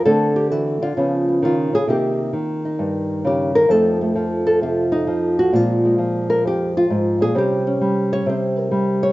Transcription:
0.05 D3 A3 C4 A4
0.36 G4
0.51 E3 F#4
0.82 D3 F4
0.97 C#3 F3 B3 C#4
1.28 B3
1.42 D#3 F4
1.73 C#3 G#4
1.88 C3 D#3 A#3 D#4 G4
2.33 D#3
2.65 D#4
2.79 G2
3.25 C#3 G4
3.55 D#3 A#4
3.69 F2 F3 A3 D#4 A4
4.01 A3
4.15 F3
4.47 A4
4.62 C3 F4
4.92 D#4
5.07 F3
5.39 F#4
5.53 A#2 F3 G#3 C4 F4
5.85 G#3
5.98 F3
6.30 A#4
6.45 F2 G4
6.77 F4
6.90 G#2
7.20 A#2 G#4
7.35 C3 G3 C#4 G4
7.67 C#4
7.81 G3
8.13 C#5
8.26 C3 C5
8.59 A#4
8.71 G3
9.03 C#5

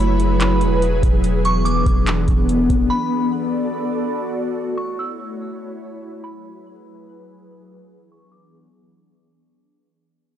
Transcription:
Already playing: F#1 F#3 E4 G#4 B4 B5
0.20 closed hi-hat
0.40 clap, closed hi-hat
0.61 E1, closed hi-hat
0.82 closed hi-hat
1.03 E1, kick, closed hi-hat
1.24 E3 B3 D4, closed hi-hat
1.45 C#6, closed hi-hat
1.65 D6, closed hi-hat
1.86 E1, kick, closed hi-hat
2.07 clap, closed hi-hat
2.28 E1, kick, closed hi-hat
2.49 closed hi-hat
2.70 E1, kick, closed hi-hat
2.90 F#4 A4 D5 B5
4.57 A3 E4 C#5
4.77 C#6
4.99 E6
6.24 F#3 G#4 B4 B5
7.90 E3 B3 D4
8.12 C#6
8.32 D6

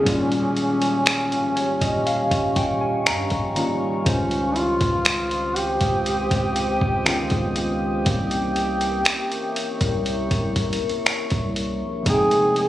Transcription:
Already playing: C#4, downlifter
0.03 D#1 D#3 G3 A#3 G4 F5 C#6, kick, closed hi-hat
0.08 C#4 F4
0.32 closed hi-hat
0.57 closed hi-hat
0.82 closed hi-hat
1.06 finger snap, closed hi-hat
1.31 C#1, closed hi-hat
1.56 C#5, closed hi-hat
1.81 D#1 D#5, kick, closed hi-hat
2.06 F5, closed hi-hat
2.31 D#1, kick, closed hi-hat
2.56 G5, kick, closed hi-hat
2.81 G#5
3.06 G2 A#5, finger snap, closed hi-hat
3.30 C#1, kick, closed hi-hat
3.55 D#3 G3 A#3 C#4 F4 A#5, closed hi-hat
4.03 C#2 D#3 G#3 C5 D#6, kick, closed hi-hat
4.07 C#4 F4
4.31 closed hi-hat
4.56 F4, closed hi-hat
4.81 C#2, kick, closed hi-hat
5.05 finger snap, closed hi-hat
5.31 closed hi-hat
5.56 G4, closed hi-hat
5.81 C#2, kick, closed hi-hat
6.06 closed hi-hat
6.31 C#2, kick, closed hi-hat
6.56 closed hi-hat
6.81 C#2, kick
7.04 D#3 G#3 B3 C#4 F4, finger snap, closed hi-hat
7.30 C#2, kick, closed hi-hat
7.56 G4, closed hi-hat
8.03 C2 E3 A#3 C4 A#4 E5 C#6, kick, closed hi-hat
8.08 C#4 G4
8.31 closed hi-hat
8.56 closed hi-hat
8.81 closed hi-hat
9.05 finger snap, closed hi-hat
9.32 closed hi-hat
9.56 closed hi-hat
9.81 C2, kick, closed hi-hat
10.06 closed hi-hat
10.31 C2, kick, closed hi-hat
10.56 kick, closed hi-hat
10.73 closed hi-hat
10.89 closed hi-hat
11.06 finger snap, closed hi-hat
11.30 C2, kick, closed hi-hat
11.56 closed hi-hat
11.81 A#1
12.03 F1 F3 G#3 C4 G#4 F5, kick, closed hi-hat
12.08 D#4 G#4 G5
12.31 closed hi-hat
12.56 G#4, closed hi-hat

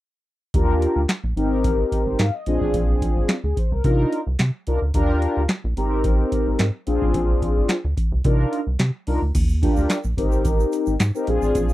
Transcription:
0.54 D#2 D4 F4 G4 A#4, kick, closed hi-hat
0.82 closed hi-hat
0.96 D2
1.09 snare, clap, closed hi-hat
1.24 A#1
1.36 G#1 C4 D#4 G4 A#4, closed hi-hat
1.64 kick, closed hi-hat
1.92 C5, kick, closed hi-hat
2.06 G#1
2.19 G#2 F5, snare, clap, closed hi-hat
2.34 D#5
2.46 A#1 C4 D4 F4 G#4, closed hi-hat
2.61 A1, kick
2.74 A#1, kick, closed hi-hat
3.02 kick, closed hi-hat
3.16 G#1
3.29 snare, clap, closed hi-hat
3.44 D2 G#4
3.57 C5, kick, closed hi-hat
3.72 C2 A#4
3.84 C3 D4 D#4 F4 A#4, kick, closed hi-hat
4.13 closed hi-hat
4.27 C2
4.39 C3, snare, clap, closed hi-hat
4.67 C2 D4 D#4 F4 A#4, closed hi-hat
4.82 D2
4.94 D#2 D4 F4 G4 A#4, kick, closed hi-hat
5.22 closed hi-hat
5.37 D2
5.49 snare, clap, closed hi-hat
5.64 A#1
5.76 G#1 C4 D#4 G4 A#4, closed hi-hat
6.04 kick, closed hi-hat
6.32 kick, closed hi-hat
6.47 G#1
6.59 G#2, snare, clap, closed hi-hat
6.86 A#1 C4 D4 F4 G#4, closed hi-hat
7.02 A1, kick
7.14 A#1, kick, closed hi-hat
7.42 kick, closed hi-hat
7.57 G#1
7.69 snare, clap, closed hi-hat
7.85 D2
7.97 kick, closed hi-hat
8.12 C2
8.24 C3 D4 D#4 F4 A#4, kick, closed hi-hat
8.53 closed hi-hat
8.67 C2
8.79 C3, snare, clap, closed hi-hat
9.07 C2 D4 D#4 F4 A#4, open hi-hat
9.22 D2
9.35 D#2, kick, closed hi-hat, crash, shaker
9.49 shaker
9.62 D4 F4 G4 A#4, kick, closed hi-hat
9.76 D2, shaker
9.90 snare, clap, closed hi-hat, shaker
10.04 A#1, shaker
10.17 G#1 C4 D#4 G4 A#4, kick, closed hi-hat
10.32 shaker
10.45 kick, closed hi-hat, shaker
10.60 shaker
10.72 closed hi-hat, shaker
10.86 G#1, shaker
11.00 G#2, snare, clap, closed hi-hat, shaker
11.14 C4 D#4 G4 A#4, shaker
11.27 A#1 C4 D4 F4 G#4, closed hi-hat
11.42 A1, shaker
11.55 A#1, kick, closed hi-hat, shaker
11.69 shaker

